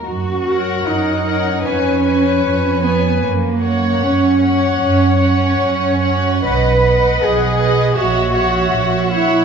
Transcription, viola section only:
X:1
M:4/4
L:1/8
Q:1/4=77
K:F#
V:1 name="Viola section"
z A2 A B B2 B | z c2 c2 c2 c | B B2 B c c2 c |]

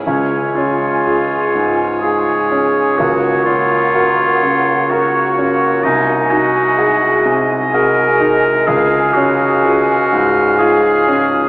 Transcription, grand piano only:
X:1
M:3/4
L:1/8
Q:1/4=63
K:Db
V:1 name="Grand piano"
D,, D [FA] A,, [FA] D | D,, D [GB] D, [GB] D | C,, E [GA] C, [GA] E | D,, D [FA] A,, [FA] D |]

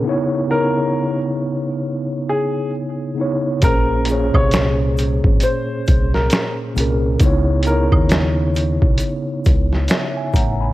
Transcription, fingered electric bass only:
X:1
M:4/4
L:1/16
Q:"Swing 16ths" 1/4=67
K:Dblyd
V:1 name="Fingered electric bass" clef=bass
z16 | B,,,3 C,,4 A,,, z2 C,,2 z2 C,,2 | D,,3 E,,4 _C,, z2 D,,2 z2 =A,,,2 |]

